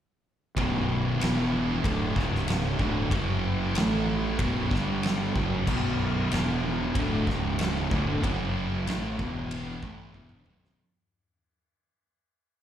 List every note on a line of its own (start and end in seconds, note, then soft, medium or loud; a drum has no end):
0.57 1.17 B0 loud
0.57 1.20 B1 medium
0.57 1.20 F#2 medium
0.57 1.20 B2 loud
0.57 kick loud
0.57 ride bell medium
1.21 1.81 E1 medium
1.21 1.84 E2 loud
1.21 1.84 B2 loud
1.21 1.84 E3 loud
1.21 snare loud
1.21 ride bell medium
1.84 2.14 D1 medium
1.84 2.15 D2 loud
1.84 2.16 A2 medium
1.84 2.16 D3 loud
1.84 kick loud
1.84 ride bell medium
2.16 2.76 C#1 medium
2.16 2.79 C#2 medium
2.16 2.80 G#2 medium
2.16 2.80 C#3 loud
2.16 kick loud
2.16 snare soft
2.35 snare soft
2.48 snare loud
2.48 ride bell medium
2.79 3.10 D1 medium
2.79 3.12 D2 medium
2.79 3.12 A2 medium
2.79 3.12 D3 loud
2.79 kick loud
3.11 3.72 F#1 medium
3.11 3.75 F#2 medium
3.11 3.76 C#3 medium
3.11 3.76 F#3 loud
3.11 kick loud
3.11 ride bell medium
3.75 4.35 A1 medium
3.75 4.39 A2 medium
3.75 4.40 E3 loud
3.75 4.40 A3 loud
3.75 snare loud
3.75 ride bell medium
4.39 4.69 B0 loud
4.39 4.71 B1 loud
4.39 4.71 F#2 loud
4.39 4.72 B2 loud
4.39 kick loud
4.39 ride bell medium
4.71 5.32 G1 medium
4.71 5.35 G2 medium
4.71 5.36 D3 medium
4.71 5.36 G3 loud
4.71 kick loud
4.71 snare soft
5.03 snare loud
5.03 ride bell medium
5.35 5.65 F#1 loud
5.35 5.67 F#2 medium
5.35 5.68 C#3 loud
5.35 5.68 F#3 loud
5.35 kick loud
5.67 6.27 B0 medium
5.67 6.31 B1 medium
5.67 6.32 F#2 loud
5.67 6.32 B2 loud
5.67 kick loud
5.67 crash loud
6.32 6.92 E1 loud
6.32 6.95 E2 loud
6.32 6.95 B2 loud
6.32 6.96 E3 loud
6.32 snare loud
6.32 ride bell medium
6.95 7.25 D1 loud
6.95 7.27 D2 loud
6.95 7.27 A2 loud
6.95 7.27 D3 loud
6.95 kick loud
6.95 ride bell medium
7.27 7.87 C#1 medium
7.27 7.90 C#2 medium
7.27 7.91 G#2 medium
7.27 7.91 C#3 loud
7.27 kick loud
7.27 snare soft
7.59 snare loud
7.59 ride bell medium
7.91 8.21 D1 loud
7.91 8.22 D2 medium
7.91 8.22 A2 medium
7.91 8.23 D3 loud
7.91 kick loud
8.23 8.83 F#1 medium
8.23 8.86 F#2 medium
8.23 8.86 C#3 medium
8.23 8.87 F#3 loud
8.23 kick loud
8.23 ride bell medium
8.86 9.16 A1 medium
8.86 9.18 A2 loud
8.86 9.18 E3 loud
8.86 9.19 A3 loud
8.86 snare loud
8.86 ride bell medium
9.19 9.79 E1 loud
9.19 9.82 E2 medium
9.19 9.82 B2 loud
9.19 9.82 E3 loud
9.19 kick loud
9.51 ride bell medium
9.83 10.12 A1 medium
9.83 10.14 A2 medium
9.83 10.14 E3 medium
9.83 10.14 A3 loud
9.83 kick loud
10.14 10.44 E1 loud
10.14 10.45 E2 medium
10.14 10.46 B2 medium
10.14 10.46 E3 loud
10.14 kick medium
10.29 mid tom medium
10.46 10.76 B0 medium
10.46 10.77 B1 medium
10.46 10.78 F#2 medium
10.46 10.78 B2 medium
10.46 mid tom medium
10.65 snare medium